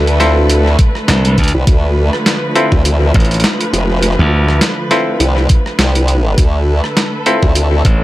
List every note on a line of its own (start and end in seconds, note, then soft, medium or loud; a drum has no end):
0.00 0.77 D2 loud
0.00 8.04 D3 medium
0.00 8.04 A3 medium
0.00 0.17 C4 medium
0.00 0.17 E4 medium
0.00 0.17 F4 medium
0.00 0.17 A4 loud
0.00 1.66 A4 medium
0.00 8.04 B4 medium
0.07 closed hi-hat soft
0.20 0.76 C4 medium
0.20 0.76 E4 medium
0.20 0.76 F4 medium
0.20 0.76 A4 loud
0.20 snare soft
0.20 closed hi-hat medium
0.50 closed hi-hat medium
0.66 cross-stick soft
0.79 kick loud
0.79 closed hi-hat medium
0.95 cross-stick soft
1.08 1.36 C2 loud
1.08 snare loud
1.08 closed hi-hat medium
1.25 closed hi-hat medium
1.38 kick medium
1.38 closed hi-hat soft
1.44 closed hi-hat soft
1.48 closed hi-hat medium
1.54 1.65 C2 loud
1.67 2.10 D2 medium
1.67 6.37 F3 medium
1.67 kick loud
1.67 closed hi-hat medium
2.13 cross-stick medium
2.26 snare loud
2.26 closed hi-hat medium
2.55 4.88 C4 medium
2.55 4.88 E4 medium
2.55 4.88 F4 medium
2.55 4.88 A4 loud
2.55 closed hi-hat medium
2.72 3.12 D2 loud
2.72 kick medium
2.85 closed hi-hat medium
3.14 3.42 A1 medium
3.14 kick loud
3.14 closed hi-hat soft
3.20 closed hi-hat soft
3.25 closed hi-hat soft
3.31 closed hi-hat soft
3.34 closed hi-hat medium
3.40 closed hi-hat medium
3.44 snare loud
3.44 closed hi-hat medium
3.61 closed hi-hat medium
3.73 4.16 F1 loud
3.73 closed hi-hat medium
3.90 cross-stick soft
3.96 cross-stick soft
4.03 cross-stick soft
4.03 closed hi-hat medium
4.11 cross-stick soft
4.19 4.59 D2 loud
4.49 cross-stick medium
4.61 snare loud
4.61 closed hi-hat medium
4.91 5.46 C4 medium
4.91 5.46 E4 medium
4.91 5.46 F4 medium
4.91 5.46 A4 loud
4.91 snare soft
4.91 closed hi-hat medium
5.20 5.47 C2 medium
5.20 closed hi-hat medium
5.37 cross-stick soft
5.49 kick loud
5.49 closed hi-hat medium
5.66 cross-stick soft
5.79 6.36 C2 loud
5.79 snare loud
5.79 closed hi-hat medium
5.95 closed hi-hat medium
6.08 closed hi-hat medium
6.38 6.81 D2 loud
6.38 8.04 A4 medium
6.38 kick loud
6.38 closed hi-hat medium
6.84 cross-stick medium
6.97 snare loud
6.97 closed hi-hat medium
7.26 8.04 C4 medium
7.26 8.04 E4 medium
7.26 8.04 F4 medium
7.26 8.04 A4 loud
7.26 closed hi-hat medium
7.43 7.83 D2 loud
7.43 kick medium
7.55 closed hi-hat medium
7.85 8.04 A1 loud
7.85 kick loud
7.85 closed hi-hat medium